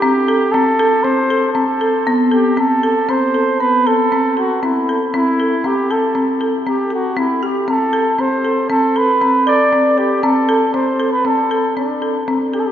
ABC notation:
X:1
M:5/4
L:1/16
Q:1/4=118
K:Ador
V:1 name="Flugelhorn"
G4 A4 c4 A6 G2 | A4 c4 B2 A4 F2 E3 z | E4 G2 A4 z2 G2 F2 E2 G2 | A4 c4 A2 B4 d4 G2 |
A4 c3 B A4 D4 z2 G/2 A/2 G |]
V:2 name="Marimba"
C2 A2 C2 A2 C2 A2 C2 A2 B,2 A2 | C2 A2 C2 A2 B,2 A2 C2 A2 C2 A2 | C2 A2 C2 A2 C2 A2 C2 A2 C2 G2 | C2 A2 C2 A2 C2 A2 C2 A2 C2 A2 |
C2 A2 C2 A2 C2 A2 C2 A2 C2 A2 |]